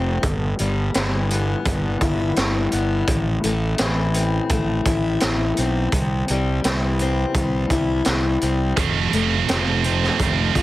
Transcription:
0.00 0.17 F1 medium
0.00 0.24 A3 medium
0.00 0.23 C4 medium
0.00 0.24 F4 medium
0.23 0.53 G1 medium
0.23 2.01 G2 medium
0.23 kick loud
0.23 closed hi-hat medium
0.59 0.89 G1 medium
0.59 1.66 G3 medium
0.59 closed hi-hat medium
0.94 1.54 G1 medium
0.94 3.79 E3 medium
0.94 snare loud
0.94 closed hi-hat medium
1.30 2.72 B3 medium
1.30 closed hi-hat medium
1.65 1.95 G1 medium
1.65 2.36 G3 medium
1.65 kick loud
1.65 closed hi-hat medium
2.01 2.31 G1 medium
2.01 4.87 E4 medium
2.01 kick medium
2.01 closed hi-hat soft
2.36 2.66 G1 medium
2.36 3.08 G3 medium
2.36 snare loud
2.36 closed hi-hat medium
2.72 3.02 G1 medium
2.72 3.08 B3 medium
2.72 closed hi-hat medium
3.08 3.37 A1 medium
3.08 4.86 A2 medium
3.08 kick loud
3.08 closed hi-hat medium
3.44 3.73 A1 medium
3.44 4.50 A3 medium
3.44 closed hi-hat medium
3.78 4.38 A1 medium
3.78 5.57 E3 medium
3.78 snare loud
3.78 closed hi-hat medium
4.14 5.58 C4 medium
4.14 closed hi-hat medium
4.49 4.80 A1 medium
4.49 5.22 A3 medium
4.49 kick loud
4.49 closed hi-hat medium
4.85 5.16 A1 medium
4.85 5.93 E4 medium
4.85 kick medium
4.85 closed hi-hat medium
5.20 5.52 A1 medium
5.20 5.93 A3 medium
5.20 snare loud
5.20 closed hi-hat medium
5.57 5.87 B1 medium
5.57 7.01 C4 medium
5.57 closed hi-hat medium
5.92 6.22 C2 medium
5.92 kick loud
5.92 closed hi-hat medium
6.28 6.58 C2 medium
6.28 7.35 G3 medium
6.28 closed hi-hat medium
6.64 7.23 C2 medium
6.64 8.43 E3 medium
6.64 snare loud
6.64 closed hi-hat medium
6.99 8.42 C4 medium
6.99 closed hi-hat medium
7.34 7.65 C2 medium
7.34 8.06 G3 medium
7.34 kick loud
7.34 closed hi-hat medium
7.70 8.00 C2 medium
7.70 8.78 E4 medium
7.70 kick medium
7.70 closed hi-hat medium
8.05 8.36 C2 medium
8.05 snare loud
8.05 closed hi-hat medium
8.41 8.72 C2 medium
8.41 8.78 C4 medium
8.41 closed hi-hat medium
8.77 9.07 F1 medium
8.77 9.11 F2 medium
8.77 10.56 F2 medium
8.77 9.12 C3 medium
8.77 9.12 F3 medium
8.77 9.13 A3 medium
8.77 9.14 C4 medium
8.77 kick loud
8.77 closed hi-hat medium
9.12 9.42 F1 medium
9.12 9.46 F2 medium
9.12 9.47 C3 medium
9.12 9.48 F3 medium
9.12 10.19 A3 medium
9.12 9.48 A3 medium
9.12 9.49 C4 medium
9.12 closed hi-hat medium
9.47 10.08 F1 medium
9.47 9.82 F2 medium
9.47 9.83 C3 medium
9.47 9.83 F3 medium
9.47 10.62 F3 medium
9.47 9.84 A3 medium
9.47 9.84 C4 medium
9.47 snare loud
9.47 closed hi-hat medium
9.83 10.17 F2 medium
9.83 10.18 C3 medium
9.83 10.19 F3 medium
9.83 10.20 A3 medium
9.83 10.62 C4 medium
9.83 10.20 C4 medium
9.83 closed hi-hat medium
10.04 snare soft
10.19 10.50 F1 medium
10.19 10.53 F2 medium
10.19 10.53 C3 medium
10.19 10.54 F3 medium
10.19 10.62 A3 medium
10.19 10.54 A3 medium
10.19 10.55 C4 medium
10.19 kick loud
10.19 closed hi-hat medium
10.54 10.62 F1 medium
10.54 10.62 F2 medium
10.54 10.62 C3 medium
10.54 10.62 F3 medium
10.54 10.62 A3 medium
10.54 10.62 C4 medium
10.54 10.62 F4 medium
10.54 kick medium
10.54 closed hi-hat medium

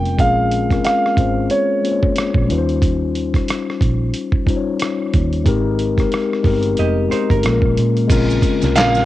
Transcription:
0.00 0.16 F1 medium
0.00 0.17 G#3 medium
0.00 0.18 C4 medium
0.00 0.19 C#4 medium
0.00 0.20 F4 medium
0.00 0.73 A#4 medium
0.00 0.15 G5 medium
0.05 closed hi-hat soft
0.17 0.78 A#1 medium
0.17 0.63 G#3 medium
0.17 0.63 C4 medium
0.17 0.64 C#4 medium
0.17 0.64 F4 medium
0.17 0.83 F5 medium
0.17 kick loud
0.17 closed hi-hat medium
0.21 0.65 G#4 medium
0.51 closed hi-hat medium
0.68 1.11 G#3 medium
0.68 1.12 C4 medium
0.68 1.12 C#4 medium
0.68 1.13 F4 medium
0.68 kick medium
0.68 closed hi-hat soft
0.72 1.13 A#4 medium
0.72 cross-stick soft
0.84 1.46 F5 medium
0.84 cross-stick medium
0.84 closed hi-hat medium
1.06 cross-stick soft
1.15 1.47 G#1 medium
1.15 1.75 G#3 medium
1.15 1.76 C4 medium
1.15 1.77 C#4 medium
1.15 1.77 F4 medium
1.15 kick medium
1.15 closed hi-hat medium
1.20 1.78 C5 medium
1.50 2.45 C#5 medium
1.50 closed hi-hat medium
1.82 2.48 G#3 medium
1.82 2.49 A#3 medium
1.82 2.47 C#4 medium
1.82 2.50 F4 medium
1.82 closed hi-hat medium
1.86 1.92 C5 medium
1.93 2.54 C#5 medium
2.03 kick medium
2.16 cross-stick loud
2.16 closed hi-hat medium
2.34 2.48 A#1 medium
2.34 kick medium
2.48 3.39 D#2 medium
2.48 3.67 G3 medium
2.48 3.67 C#4 medium
2.48 3.68 D#4 medium
2.48 3.69 F4 medium
2.48 closed hi-hat medium
2.52 2.58 B4 medium
2.58 3.72 C5 medium
2.69 closed hi-hat soft
2.82 kick loud
2.82 closed hi-hat medium
3.16 closed hi-hat soft
3.34 kick medium
3.34 cross-stick soft
3.34 closed hi-hat soft
3.48 cross-stick medium
3.48 closed hi-hat medium
3.70 cross-stick soft
3.81 4.11 A#1 medium
3.81 kick medium
3.81 closed hi-hat medium
4.14 closed hi-hat medium
4.32 kick medium
4.45 5.35 G3 medium
4.45 5.35 C#4 medium
4.45 5.36 D#4 medium
4.45 5.37 F4 medium
4.45 kick medium
4.45 closed hi-hat medium
4.50 4.56 C5 medium
4.56 5.40 C#5 medium
4.79 cross-stick medium
4.79 closed hi-hat medium
5.13 5.43 D#2 medium
5.13 kick medium
5.13 closed hi-hat medium
5.33 closed hi-hat soft
5.44 6.05 G#1 medium
5.44 5.90 G#3 loud
5.44 5.91 C4 medium
5.44 5.91 D#4 medium
5.44 5.92 G4 medium
5.44 kick loud
5.44 closed hi-hat medium
5.48 5.92 A#4 loud
5.79 closed hi-hat medium
5.96 6.39 G#3 medium
5.96 6.39 C4 medium
5.96 6.40 D#4 medium
5.96 6.40 G4 medium
5.96 kick medium
5.96 closed hi-hat soft
6.00 6.41 A#4 medium
6.00 cross-stick soft
6.12 cross-stick medium
6.12 closed hi-hat medium
6.33 cross-stick soft
6.43 6.75 G1 medium
6.43 7.03 G#3 medium
6.43 6.52 B3 medium
6.43 7.04 D#4 medium
6.43 7.05 G4 medium
6.43 kick medium
6.43 open hi-hat soft
6.47 7.07 C4 medium
6.47 7.05 A#4 medium
6.63 closed hi-hat soft
6.77 7.08 F1 medium
6.77 7.10 G4 medium
6.77 7.10 D#5 medium
6.77 closed hi-hat medium
7.09 7.40 G#3 medium
7.09 7.43 C4 medium
7.09 7.44 D#4 medium
7.09 7.29 D#4 medium
7.09 7.44 G4 medium
7.09 7.29 C5 medium
7.09 closed hi-hat medium
7.13 7.45 A#4 medium
7.30 7.43 G1 medium
7.30 7.61 A#4 medium
7.30 kick medium
7.30 closed hi-hat soft
7.42 7.62 A#1 medium
7.42 8.02 G#3 medium
7.42 8.03 A#3 medium
7.42 8.03 C#4 medium
7.42 8.04 F4 medium
7.42 closed hi-hat medium
7.46 7.52 A4 medium
7.46 cross-stick medium
7.53 8.07 A#4 loud
7.62 7.75 A#1 medium
7.62 kick medium
7.77 8.07 A#2 medium
7.77 closed hi-hat medium
7.96 closed hi-hat soft
8.07 8.40 A#1 medium
8.07 9.05 C#3 medium
8.07 8.54 G#3 loud
8.07 9.05 G#3 medium
8.07 9.05 A#3 medium
8.07 8.54 C4 loud
8.07 8.55 C#4 loud
8.07 8.55 F4 loud
8.07 kick loud
8.07 closed hi-hat medium
8.07 crash loud
8.07 maracas medium
8.12 8.56 A#4 loud
8.30 maracas soft
8.42 kick medium
8.42 closed hi-hat medium
8.42 maracas medium
8.59 8.77 C2 medium
8.59 9.02 G#3 medium
8.59 9.03 C4 medium
8.59 9.03 C#4 medium
8.59 9.04 F4 medium
8.59 closed hi-hat soft
8.59 maracas soft
8.63 9.04 A#4 medium
8.63 snare soft
8.75 9.05 A#1 loud
8.75 9.05 F5 loud
8.75 finger snap medium
8.75 snare loud
8.75 clap medium
8.75 closed hi-hat medium
8.75 maracas medium
8.94 snare soft
8.94 maracas soft

